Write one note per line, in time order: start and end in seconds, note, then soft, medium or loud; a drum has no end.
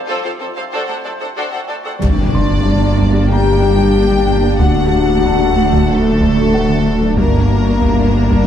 0.00 2.02 A3 medium
0.00 2.02 C4 medium
0.00 0.73 F4 medium
0.00 0.73 C5 medium
0.00 1.01 D6 soft
0.07 0.15 F2 medium
0.07 0.18 F3 medium
0.07 0.24 C4 medium
0.07 0.23 F4 medium
0.07 0.23 A4 soft
0.07 0.23 A4 medium
0.23 0.32 F2 soft
0.23 0.31 C4 soft
0.23 0.35 F4 medium
0.23 0.31 A4 soft
0.23 0.30 C5 soft
0.23 0.30 F5 soft
0.39 0.48 F2 soft
0.39 0.47 C4 soft
0.39 0.51 C4 soft
0.39 0.46 A4 soft
0.39 0.47 A4 soft
0.39 0.46 C5 soft
0.56 0.64 F2 soft
0.56 0.67 C4 soft
0.56 0.64 C4 soft
0.56 0.64 A4 soft
0.56 0.63 C5 soft
0.56 0.62 F5 soft
0.72 0.80 D2 soft
0.72 0.83 D3 medium
0.72 0.88 D4 soft
0.72 0.87 F#4 soft
0.72 2.02 F#4 medium
0.72 0.88 A4 medium
0.72 0.86 C5 soft
0.72 2.01 D5 medium
0.87 0.96 D2 soft
0.87 0.98 A3 medium
0.87 0.96 D4 soft
0.87 0.96 A4 soft
0.87 0.94 C5 soft
0.87 0.94 F#5 soft
1.04 1.13 D2 soft
1.04 1.15 F#3 medium
1.04 1.12 D4 soft
1.04 1.11 A4 soft
1.04 1.12 A4 soft
1.04 1.11 D5 soft
1.21 1.29 D2 soft
1.21 1.31 C4 medium
1.21 1.27 D4 soft
1.21 1.28 A4 soft
1.21 1.27 C5 soft
1.21 1.28 F#5 soft
1.36 1.44 D2 medium
1.36 1.47 D3 medium
1.36 1.52 D4 soft
1.36 1.52 F#4 soft
1.36 1.51 A4 soft
1.36 1.51 C5 soft
1.52 1.61 D2 soft
1.52 1.63 F#3 soft
1.52 1.60 D4 soft
1.52 1.59 A4 soft
1.52 1.59 C5 soft
1.52 1.59 F#5 soft
1.68 1.77 D2 soft
1.68 1.79 A3 soft
1.68 1.75 D4 soft
1.68 1.75 A4 soft
1.68 1.76 A4 soft
1.68 1.75 D5 soft
1.85 1.93 D2 soft
1.85 1.95 A3 medium
1.85 1.91 D4 soft
1.85 1.91 A4 soft
1.85 1.92 C5 soft
1.85 1.92 F#5 soft
2.01 4.56 G1 medium
2.01 4.61 G1 medium
2.01 4.56 G2 medium
2.01 2.11 G3 medium
2.01 4.55 A#3 soft
2.01 4.56 A#3 soft
2.01 3.26 D4 medium
2.01 7.13 D4 medium
2.01 7.14 D4 medium
2.01 4.56 G4 medium
2.01 3.26 D5 medium
2.01 7.14 D5 medium
2.01 taiko medium
2.01 impact medium
2.35 4.24 C6 soft
2.66 2.76 G3 medium
2.82 2.92 D4 medium
2.98 3.08 D4 medium
2.98 taiko soft
3.14 3.24 G3 medium
3.30 4.60 G4 medium
3.30 4.57 G5 medium
3.30 5.21 A#5 soft
3.62 3.72 G3 medium
3.78 3.88 D4 medium
4.11 4.21 G3 medium
4.43 4.53 A#3 medium
4.59 7.19 D1 medium
4.59 7.18 D2 medium
4.59 4.69 D3 medium
4.59 7.14 A3 medium
4.59 7.18 A3 medium
4.59 5.86 F#4 medium
4.59 7.18 F#4 medium
4.59 5.86 F#5 medium
4.59 taiko medium
5.24 5.34 D3 medium
5.24 7.14 A5 soft
5.24 taiko medium
5.40 5.50 A3 medium
5.56 5.66 A3 medium
5.72 5.82 D3 medium
5.72 taiko medium
5.89 7.18 A3 medium
5.89 7.18 A4 medium
6.21 6.31 D3 medium
6.21 taiko medium
6.37 6.47 A3 medium
6.54 8.43 F#5 soft
6.70 6.79 D3 medium
7.02 7.12 F#3 medium
7.17 8.47 G1 medium
7.17 8.47 G2 medium
7.17 8.47 G3 medium
7.17 7.28 G3 medium
7.17 8.47 A#3 medium
7.17 8.45 A#3 medium
7.17 8.47 D4 medium
7.17 8.44 A#4 medium
7.17 8.47 A#4 medium
7.17 8.47 D5 medium
7.17 taiko medium
7.82 7.92 G3 medium
7.82 taiko medium
7.99 8.08 D4 medium
8.15 8.25 D4 medium
8.30 8.40 G3 medium
8.30 taiko medium